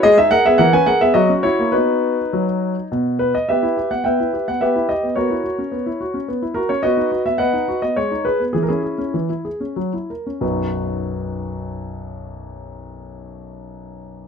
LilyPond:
\new Staff \with { instrumentName = "Grand piano" } { \time 3/4 \key b \major \tempo 4 = 104 << { <gis' dis''>16 <gis' e''>16 <ais' fis''>16 <gis' e''>16 <ais' fis''>16 <b' gis''>16 <ais' fis''>16 <gis' e''>16 <fis' dis''>8 <e' cis''>8 | <dis' b'>2 r8 b'16 dis''16 | <g' b' e''>8. fis''16 <b' e'' g''>8. fis''16 <g' b' e''>8 dis''8 | <fis' ais' cis''>2 r8 ais'16 cis''16 |
<fis' b' dis''>8. e''16 <b' dis'' fis''>8. dis''16 cis''8 b'8 | gis'32 ais'32 <cis' e' gis'>4.~ <cis' e' gis'>16 r4 | <b,, fis, fis b dis' fis' b'>2.~ | <b,, fis, fis b dis' fis' b'>2. | } \\ { gis16 dis'16 gis'16 b16 e16 cis'16 gis'16 b16 fis16 cis'16 fis'16 ais16 | <b fis'>4 fis4 b,4 | b16 e'16 g'16 b16 b16 e'16 g'16 b16 b16 e'16 g'16 b16 | b16 e'16 fis'16 cis'16 b16 e'16 fis'16 cis'16 b16 e'16 fis'16 cis'16 |
b16 dis'16 fis'16 b16 b16 dis'16 fis'16 b16 gis16 dis'16 gis'16 b16 | e16 r16 gis'16 cis'16 e16 e'16 gis'16 cis'16 fis16 e'16 ais'16 cis'16 | r2. | r2. | } >> }